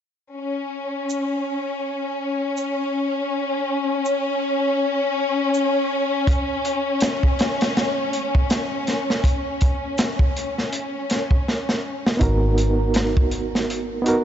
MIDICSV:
0, 0, Header, 1, 5, 480
1, 0, Start_track
1, 0, Key_signature, 5, "minor"
1, 0, Tempo, 740741
1, 229, Time_signature, 4, 2, 24, 8
1, 9228, End_track
2, 0, Start_track
2, 0, Title_t, "Reed electric piano"
2, 0, Program_c, 0, 4
2, 7887, Note_on_c, 0, 59, 83
2, 7901, Note_on_c, 0, 63, 73
2, 7913, Note_on_c, 0, 66, 74
2, 7927, Note_on_c, 0, 70, 88
2, 8034, Control_c, 0, 64, 127
2, 9074, Note_off_c, 0, 59, 0
2, 9081, Note_off_c, 0, 63, 0
2, 9086, Note_on_c, 0, 59, 88
2, 9088, Note_off_c, 0, 66, 0
2, 9094, Note_off_c, 0, 70, 0
2, 9099, Note_on_c, 0, 63, 79
2, 9112, Note_on_c, 0, 66, 84
2, 9126, Note_on_c, 0, 70, 95
2, 9228, Note_off_c, 0, 59, 0
2, 9228, Note_off_c, 0, 63, 0
2, 9228, Note_off_c, 0, 66, 0
2, 9228, Note_off_c, 0, 70, 0
2, 9228, End_track
3, 0, Start_track
3, 0, Title_t, "String section"
3, 0, Program_c, 1, 48
3, 222, Note_on_c, 1, 61, 71
3, 7917, Note_off_c, 1, 61, 0
3, 9228, End_track
4, 0, Start_track
4, 0, Title_t, "Fingered electric bass"
4, 0, Program_c, 2, 33
4, 7914, Note_on_c, 2, 32, 94
4, 9228, Note_off_c, 2, 32, 0
4, 9228, End_track
5, 0, Start_track
5, 0, Title_t, "Drums"
5, 709, Note_on_c, 9, 82, 61
5, 774, Note_off_c, 9, 82, 0
5, 1665, Note_on_c, 9, 82, 69
5, 1730, Note_off_c, 9, 82, 0
5, 2627, Note_on_c, 9, 82, 60
5, 2692, Note_off_c, 9, 82, 0
5, 3590, Note_on_c, 9, 82, 69
5, 3655, Note_off_c, 9, 82, 0
5, 4065, Note_on_c, 9, 36, 95
5, 4070, Note_on_c, 9, 42, 76
5, 4130, Note_off_c, 9, 36, 0
5, 4134, Note_off_c, 9, 42, 0
5, 4308, Note_on_c, 9, 42, 58
5, 4373, Note_off_c, 9, 42, 0
5, 4539, Note_on_c, 9, 42, 68
5, 4550, Note_on_c, 9, 38, 106
5, 4550, Note_on_c, 9, 82, 63
5, 4604, Note_off_c, 9, 42, 0
5, 4615, Note_off_c, 9, 38, 0
5, 4615, Note_off_c, 9, 82, 0
5, 4687, Note_on_c, 9, 36, 82
5, 4752, Note_off_c, 9, 36, 0
5, 4789, Note_on_c, 9, 42, 71
5, 4800, Note_on_c, 9, 38, 97
5, 4854, Note_off_c, 9, 42, 0
5, 4864, Note_off_c, 9, 38, 0
5, 4931, Note_on_c, 9, 42, 75
5, 4938, Note_on_c, 9, 38, 90
5, 4996, Note_off_c, 9, 42, 0
5, 5003, Note_off_c, 9, 38, 0
5, 5034, Note_on_c, 9, 42, 61
5, 5036, Note_on_c, 9, 38, 94
5, 5099, Note_off_c, 9, 42, 0
5, 5101, Note_off_c, 9, 38, 0
5, 5269, Note_on_c, 9, 42, 62
5, 5334, Note_off_c, 9, 42, 0
5, 5410, Note_on_c, 9, 36, 85
5, 5474, Note_off_c, 9, 36, 0
5, 5508, Note_on_c, 9, 82, 69
5, 5509, Note_on_c, 9, 42, 83
5, 5513, Note_on_c, 9, 38, 100
5, 5573, Note_off_c, 9, 82, 0
5, 5574, Note_off_c, 9, 42, 0
5, 5578, Note_off_c, 9, 38, 0
5, 5749, Note_on_c, 9, 42, 57
5, 5755, Note_on_c, 9, 38, 45
5, 5813, Note_off_c, 9, 42, 0
5, 5819, Note_off_c, 9, 38, 0
5, 5898, Note_on_c, 9, 38, 55
5, 5962, Note_off_c, 9, 38, 0
5, 5986, Note_on_c, 9, 36, 89
5, 5992, Note_on_c, 9, 42, 83
5, 6051, Note_off_c, 9, 36, 0
5, 6056, Note_off_c, 9, 42, 0
5, 6225, Note_on_c, 9, 42, 63
5, 6233, Note_on_c, 9, 36, 89
5, 6290, Note_off_c, 9, 42, 0
5, 6298, Note_off_c, 9, 36, 0
5, 6465, Note_on_c, 9, 82, 61
5, 6467, Note_on_c, 9, 42, 81
5, 6473, Note_on_c, 9, 38, 104
5, 6530, Note_off_c, 9, 82, 0
5, 6532, Note_off_c, 9, 42, 0
5, 6538, Note_off_c, 9, 38, 0
5, 6605, Note_on_c, 9, 36, 95
5, 6670, Note_off_c, 9, 36, 0
5, 6717, Note_on_c, 9, 42, 62
5, 6781, Note_off_c, 9, 42, 0
5, 6858, Note_on_c, 9, 38, 36
5, 6923, Note_off_c, 9, 38, 0
5, 6950, Note_on_c, 9, 42, 81
5, 7015, Note_off_c, 9, 42, 0
5, 7191, Note_on_c, 9, 42, 63
5, 7199, Note_on_c, 9, 38, 45
5, 7256, Note_off_c, 9, 42, 0
5, 7264, Note_off_c, 9, 38, 0
5, 7327, Note_on_c, 9, 36, 79
5, 7392, Note_off_c, 9, 36, 0
5, 7442, Note_on_c, 9, 38, 49
5, 7506, Note_off_c, 9, 38, 0
5, 7574, Note_on_c, 9, 38, 52
5, 7639, Note_off_c, 9, 38, 0
5, 7818, Note_on_c, 9, 38, 81
5, 7883, Note_off_c, 9, 38, 0
5, 7911, Note_on_c, 9, 36, 100
5, 7911, Note_on_c, 9, 42, 83
5, 7976, Note_off_c, 9, 36, 0
5, 7976, Note_off_c, 9, 42, 0
5, 8150, Note_on_c, 9, 42, 69
5, 8215, Note_off_c, 9, 42, 0
5, 8385, Note_on_c, 9, 42, 81
5, 8399, Note_on_c, 9, 38, 106
5, 8450, Note_off_c, 9, 42, 0
5, 8464, Note_off_c, 9, 38, 0
5, 8533, Note_on_c, 9, 36, 89
5, 8597, Note_off_c, 9, 36, 0
5, 8628, Note_on_c, 9, 42, 60
5, 8693, Note_off_c, 9, 42, 0
5, 8781, Note_on_c, 9, 38, 53
5, 8846, Note_off_c, 9, 38, 0
5, 8878, Note_on_c, 9, 42, 76
5, 8943, Note_off_c, 9, 42, 0
5, 9110, Note_on_c, 9, 42, 65
5, 9175, Note_off_c, 9, 42, 0
5, 9228, End_track
0, 0, End_of_file